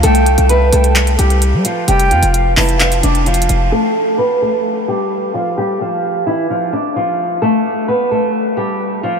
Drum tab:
HH |x--x--x--x--x-----x--x--x--x--x--x--x-----x-----|x--x--x--x--x-----o--x--x--x--x--x--x-x-x-x-----|------------------------------------------------|------------------------------------------------|
CP |------------------------x-----------------------|------------------x-----x-----------------------|------------------------------------------------|------------------------------------------------|

HH |------------------------------------------------|
CP |------------------------------------------------|